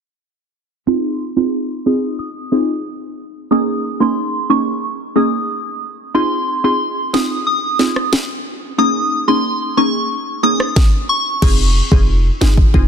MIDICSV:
0, 0, Header, 1, 5, 480
1, 0, Start_track
1, 0, Key_signature, -4, "minor"
1, 0, Tempo, 659341
1, 636, Time_signature, 4, 2, 24, 8
1, 9376, End_track
2, 0, Start_track
2, 0, Title_t, "Synth bell"
2, 0, Program_c, 0, 98
2, 635, Note_on_c, 0, 84, 93
2, 836, Note_off_c, 0, 84, 0
2, 995, Note_on_c, 0, 84, 79
2, 1096, Note_off_c, 0, 84, 0
2, 1356, Note_on_c, 0, 87, 73
2, 1456, Note_off_c, 0, 87, 0
2, 1595, Note_on_c, 0, 87, 99
2, 1934, Note_off_c, 0, 87, 0
2, 2556, Note_on_c, 0, 87, 93
2, 2656, Note_off_c, 0, 87, 0
2, 2917, Note_on_c, 0, 84, 74
2, 3017, Note_off_c, 0, 84, 0
2, 3277, Note_on_c, 0, 85, 76
2, 3377, Note_off_c, 0, 85, 0
2, 3757, Note_on_c, 0, 87, 73
2, 3857, Note_off_c, 0, 87, 0
2, 4475, Note_on_c, 0, 84, 97
2, 4676, Note_off_c, 0, 84, 0
2, 4836, Note_on_c, 0, 84, 70
2, 4936, Note_off_c, 0, 84, 0
2, 5196, Note_on_c, 0, 87, 76
2, 5296, Note_off_c, 0, 87, 0
2, 5436, Note_on_c, 0, 87, 91
2, 5774, Note_off_c, 0, 87, 0
2, 6396, Note_on_c, 0, 87, 104
2, 6496, Note_off_c, 0, 87, 0
2, 6755, Note_on_c, 0, 84, 74
2, 6856, Note_off_c, 0, 84, 0
2, 7115, Note_on_c, 0, 85, 67
2, 7216, Note_off_c, 0, 85, 0
2, 7596, Note_on_c, 0, 87, 71
2, 7696, Note_off_c, 0, 87, 0
2, 8075, Note_on_c, 0, 85, 73
2, 8176, Note_off_c, 0, 85, 0
2, 9376, End_track
3, 0, Start_track
3, 0, Title_t, "Synth pluck"
3, 0, Program_c, 1, 84
3, 634, Note_on_c, 1, 60, 88
3, 636, Note_on_c, 1, 63, 81
3, 637, Note_on_c, 1, 65, 80
3, 639, Note_on_c, 1, 68, 97
3, 966, Note_off_c, 1, 60, 0
3, 967, Note_off_c, 1, 63, 0
3, 968, Note_off_c, 1, 65, 0
3, 969, Note_off_c, 1, 68, 0
3, 994, Note_on_c, 1, 60, 77
3, 996, Note_on_c, 1, 63, 65
3, 997, Note_on_c, 1, 65, 68
3, 999, Note_on_c, 1, 68, 79
3, 1326, Note_off_c, 1, 60, 0
3, 1327, Note_off_c, 1, 63, 0
3, 1328, Note_off_c, 1, 65, 0
3, 1329, Note_off_c, 1, 68, 0
3, 1354, Note_on_c, 1, 60, 74
3, 1356, Note_on_c, 1, 63, 68
3, 1357, Note_on_c, 1, 65, 66
3, 1359, Note_on_c, 1, 68, 81
3, 1576, Note_off_c, 1, 60, 0
3, 1577, Note_off_c, 1, 63, 0
3, 1577, Note_off_c, 1, 65, 0
3, 1578, Note_off_c, 1, 68, 0
3, 1834, Note_on_c, 1, 60, 76
3, 1836, Note_on_c, 1, 63, 70
3, 1837, Note_on_c, 1, 65, 67
3, 1838, Note_on_c, 1, 68, 87
3, 1963, Note_off_c, 1, 60, 0
3, 1964, Note_off_c, 1, 63, 0
3, 1964, Note_off_c, 1, 65, 0
3, 1965, Note_off_c, 1, 68, 0
3, 2554, Note_on_c, 1, 58, 92
3, 2555, Note_on_c, 1, 61, 80
3, 2557, Note_on_c, 1, 63, 84
3, 2558, Note_on_c, 1, 68, 101
3, 2886, Note_off_c, 1, 58, 0
3, 2887, Note_off_c, 1, 61, 0
3, 2888, Note_off_c, 1, 63, 0
3, 2888, Note_off_c, 1, 68, 0
3, 2913, Note_on_c, 1, 58, 76
3, 2915, Note_on_c, 1, 61, 67
3, 2916, Note_on_c, 1, 63, 67
3, 2918, Note_on_c, 1, 68, 81
3, 3246, Note_off_c, 1, 58, 0
3, 3247, Note_off_c, 1, 61, 0
3, 3247, Note_off_c, 1, 63, 0
3, 3248, Note_off_c, 1, 68, 0
3, 3274, Note_on_c, 1, 58, 74
3, 3275, Note_on_c, 1, 61, 72
3, 3277, Note_on_c, 1, 63, 70
3, 3278, Note_on_c, 1, 68, 85
3, 3496, Note_off_c, 1, 58, 0
3, 3496, Note_off_c, 1, 61, 0
3, 3497, Note_off_c, 1, 63, 0
3, 3498, Note_off_c, 1, 68, 0
3, 3754, Note_on_c, 1, 58, 75
3, 3755, Note_on_c, 1, 61, 69
3, 3756, Note_on_c, 1, 63, 66
3, 3758, Note_on_c, 1, 68, 84
3, 3883, Note_off_c, 1, 58, 0
3, 3883, Note_off_c, 1, 61, 0
3, 3884, Note_off_c, 1, 63, 0
3, 3885, Note_off_c, 1, 68, 0
3, 4474, Note_on_c, 1, 60, 91
3, 4475, Note_on_c, 1, 63, 86
3, 4476, Note_on_c, 1, 65, 80
3, 4478, Note_on_c, 1, 68, 100
3, 4806, Note_off_c, 1, 60, 0
3, 4807, Note_off_c, 1, 63, 0
3, 4807, Note_off_c, 1, 65, 0
3, 4808, Note_off_c, 1, 68, 0
3, 4834, Note_on_c, 1, 60, 73
3, 4835, Note_on_c, 1, 63, 64
3, 4837, Note_on_c, 1, 65, 67
3, 4838, Note_on_c, 1, 68, 83
3, 5166, Note_off_c, 1, 60, 0
3, 5167, Note_off_c, 1, 63, 0
3, 5168, Note_off_c, 1, 65, 0
3, 5168, Note_off_c, 1, 68, 0
3, 5194, Note_on_c, 1, 60, 74
3, 5195, Note_on_c, 1, 63, 67
3, 5197, Note_on_c, 1, 65, 69
3, 5198, Note_on_c, 1, 68, 82
3, 5416, Note_off_c, 1, 60, 0
3, 5417, Note_off_c, 1, 63, 0
3, 5417, Note_off_c, 1, 65, 0
3, 5418, Note_off_c, 1, 68, 0
3, 5674, Note_on_c, 1, 60, 77
3, 5675, Note_on_c, 1, 63, 73
3, 5677, Note_on_c, 1, 65, 69
3, 5678, Note_on_c, 1, 68, 88
3, 5803, Note_off_c, 1, 60, 0
3, 5803, Note_off_c, 1, 63, 0
3, 5804, Note_off_c, 1, 65, 0
3, 5805, Note_off_c, 1, 68, 0
3, 6394, Note_on_c, 1, 58, 87
3, 6396, Note_on_c, 1, 61, 85
3, 6397, Note_on_c, 1, 63, 82
3, 6399, Note_on_c, 1, 68, 98
3, 6726, Note_off_c, 1, 58, 0
3, 6727, Note_off_c, 1, 61, 0
3, 6728, Note_off_c, 1, 63, 0
3, 6729, Note_off_c, 1, 68, 0
3, 6754, Note_on_c, 1, 58, 73
3, 6756, Note_on_c, 1, 61, 68
3, 6757, Note_on_c, 1, 63, 66
3, 6759, Note_on_c, 1, 68, 78
3, 7086, Note_off_c, 1, 58, 0
3, 7087, Note_off_c, 1, 61, 0
3, 7088, Note_off_c, 1, 63, 0
3, 7089, Note_off_c, 1, 68, 0
3, 7114, Note_on_c, 1, 58, 74
3, 7115, Note_on_c, 1, 61, 68
3, 7117, Note_on_c, 1, 63, 70
3, 7118, Note_on_c, 1, 68, 83
3, 7336, Note_off_c, 1, 58, 0
3, 7337, Note_off_c, 1, 61, 0
3, 7337, Note_off_c, 1, 63, 0
3, 7338, Note_off_c, 1, 68, 0
3, 7594, Note_on_c, 1, 58, 77
3, 7595, Note_on_c, 1, 61, 70
3, 7597, Note_on_c, 1, 63, 68
3, 7598, Note_on_c, 1, 68, 86
3, 7723, Note_off_c, 1, 58, 0
3, 7723, Note_off_c, 1, 61, 0
3, 7724, Note_off_c, 1, 63, 0
3, 7725, Note_off_c, 1, 68, 0
3, 8314, Note_on_c, 1, 60, 92
3, 8316, Note_on_c, 1, 63, 84
3, 8317, Note_on_c, 1, 65, 86
3, 8318, Note_on_c, 1, 68, 104
3, 8443, Note_off_c, 1, 60, 0
3, 8444, Note_off_c, 1, 63, 0
3, 8444, Note_off_c, 1, 65, 0
3, 8445, Note_off_c, 1, 68, 0
3, 8674, Note_on_c, 1, 60, 75
3, 8676, Note_on_c, 1, 63, 67
3, 8677, Note_on_c, 1, 65, 69
3, 8678, Note_on_c, 1, 68, 85
3, 8803, Note_off_c, 1, 60, 0
3, 8804, Note_off_c, 1, 63, 0
3, 8805, Note_off_c, 1, 65, 0
3, 8805, Note_off_c, 1, 68, 0
3, 9034, Note_on_c, 1, 60, 77
3, 9036, Note_on_c, 1, 63, 70
3, 9037, Note_on_c, 1, 65, 70
3, 9038, Note_on_c, 1, 68, 86
3, 9163, Note_off_c, 1, 60, 0
3, 9164, Note_off_c, 1, 63, 0
3, 9164, Note_off_c, 1, 65, 0
3, 9165, Note_off_c, 1, 68, 0
3, 9273, Note_on_c, 1, 60, 91
3, 9275, Note_on_c, 1, 63, 82
3, 9276, Note_on_c, 1, 65, 82
3, 9277, Note_on_c, 1, 68, 100
3, 9376, Note_off_c, 1, 60, 0
3, 9376, Note_off_c, 1, 63, 0
3, 9376, Note_off_c, 1, 65, 0
3, 9376, Note_off_c, 1, 68, 0
3, 9376, End_track
4, 0, Start_track
4, 0, Title_t, "808-style bass"
4, 0, Program_c, 2, 38
4, 8316, Note_on_c, 2, 29, 102
4, 8595, Note_off_c, 2, 29, 0
4, 8675, Note_on_c, 2, 29, 100
4, 8955, Note_off_c, 2, 29, 0
4, 9036, Note_on_c, 2, 31, 83
4, 9223, Note_off_c, 2, 31, 0
4, 9276, Note_on_c, 2, 29, 112
4, 9376, Note_off_c, 2, 29, 0
4, 9376, End_track
5, 0, Start_track
5, 0, Title_t, "Drums"
5, 5198, Note_on_c, 9, 38, 109
5, 5270, Note_off_c, 9, 38, 0
5, 5674, Note_on_c, 9, 38, 67
5, 5747, Note_off_c, 9, 38, 0
5, 5797, Note_on_c, 9, 37, 89
5, 5870, Note_off_c, 9, 37, 0
5, 5916, Note_on_c, 9, 38, 118
5, 5989, Note_off_c, 9, 38, 0
5, 7717, Note_on_c, 9, 37, 93
5, 7790, Note_off_c, 9, 37, 0
5, 7836, Note_on_c, 9, 36, 105
5, 7836, Note_on_c, 9, 38, 88
5, 7909, Note_off_c, 9, 36, 0
5, 7909, Note_off_c, 9, 38, 0
5, 8316, Note_on_c, 9, 36, 110
5, 8316, Note_on_c, 9, 49, 96
5, 8389, Note_off_c, 9, 36, 0
5, 8389, Note_off_c, 9, 49, 0
5, 8675, Note_on_c, 9, 36, 86
5, 8748, Note_off_c, 9, 36, 0
5, 9038, Note_on_c, 9, 38, 115
5, 9111, Note_off_c, 9, 38, 0
5, 9154, Note_on_c, 9, 36, 88
5, 9227, Note_off_c, 9, 36, 0
5, 9276, Note_on_c, 9, 36, 94
5, 9348, Note_off_c, 9, 36, 0
5, 9376, End_track
0, 0, End_of_file